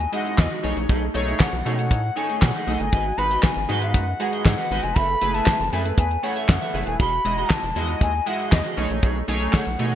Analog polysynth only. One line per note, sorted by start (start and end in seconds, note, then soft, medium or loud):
0.12 0.48 G#3 medium
0.12 0.48 E4 medium
0.12 0.48 F#4 medium
0.12 0.48 D#5 medium
0.63 1.04 A3 medium
0.63 1.04 D#4 medium
0.63 1.04 G#4 medium
0.63 1.05 C#5 medium
1.14 1.50 A3 loud
1.14 1.50 D#4 medium
1.14 1.50 G#4 loud
1.14 1.50 C#5 loud
1.65 2.01 A3 medium
1.65 2.01 D#4 medium
1.65 2.01 G#4 medium
1.65 2.01 C#5 medium
2.16 2.51 A3 medium
2.16 2.51 D#4 medium
2.16 2.52 G#4 medium
2.16 2.52 C#5 medium
2.67 2.93 A3 medium
2.67 2.93 D#4 medium
2.67 2.93 G#4 medium
2.67 2.93 D#5 medium
3.17 3.53 G#3 medium
3.17 3.53 D#4 medium
3.17 3.53 F#4 medium
3.17 3.54 B4 medium
3.69 4.04 G#3 medium
3.69 4.04 D#4 medium
3.69 4.04 F#4 medium
3.69 4.04 B4 loud
4.20 4.55 G#3 medium
4.20 4.55 D#4 medium
4.20 4.55 F#4 medium
4.20 4.55 G#4 medium
4.71 4.97 G#3 medium
4.71 4.97 D#4 medium
4.71 4.97 F#4 medium
4.71 4.97 B4 medium
5.21 5.57 A3 medium
5.21 5.57 E4 medium
5.21 5.57 G#4 medium
5.21 5.57 B4 loud
5.73 6.08 A3 medium
5.73 6.08 E4 medium
5.73 6.08 G#4 medium
5.73 6.08 B4 medium
6.23 6.58 A3 medium
6.23 6.58 E4 medium
6.23 6.59 G#4 medium
6.23 6.59 C#5 medium
6.74 6.99 A3 medium
6.74 7.00 E4 medium
6.74 7.00 G#4 medium
6.74 7.00 B4 medium
7.25 7.60 G#3 medium
7.25 7.60 E4 medium
7.25 7.60 F#4 medium
7.25 7.60 D#5 medium
7.76 8.11 G#3 medium
7.76 8.11 E4 medium
7.76 8.11 F#4 medium
7.76 8.11 D#5 loud
8.26 8.62 G#3 medium
8.26 8.62 E4 medium
8.26 8.62 F#4 medium
8.26 8.62 D#5 medium
8.77 9.18 A3 medium
8.77 8.83 C#4 medium
8.77 9.18 G#4 medium
8.77 9.18 C#5 medium
8.83 9.21 D#4 medium
9.28 9.63 A3 loud
9.28 9.63 D#4 medium
9.28 9.64 G#4 loud
9.28 9.64 C#5 loud
9.79 9.95 A3 medium
9.79 9.95 D#4 medium
9.79 9.95 G#4 medium
9.79 9.95 C#5 medium